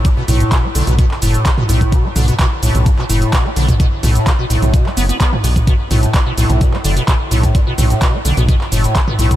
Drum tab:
HH |x-oxx-oxx-oxx-ox|x-oxx-oxx-oxx-ox|x-oxx-oxx-oxx-ox|x-oxx-oxx-oxx-ox|
SH |x-xxx-xxx-xxx-xx|x-xxx-xxx-xxx-xx|x-xxx-xxx-xxx-xx|x-xxx-xxx-xxx-xx|
CP |----x----x--x---|----x----x--x---|----x----x--x---|----x----x--x---|
T2 |--o----o-----o-o|--o----o-------o|--o----o-----o-o|--o----o-------o|
BD |o---o---o---o--o|o---o---o---o--o|o---o---o---o--o|o---o---o---o--o|

HH |x-oxx-oxx-oxx-ox|
SH |x-xxx-xxx-xxx-xx|
CP |----x----x--x---|
T2 |--o----o-----o-o|
BD |o---o---o---o--o|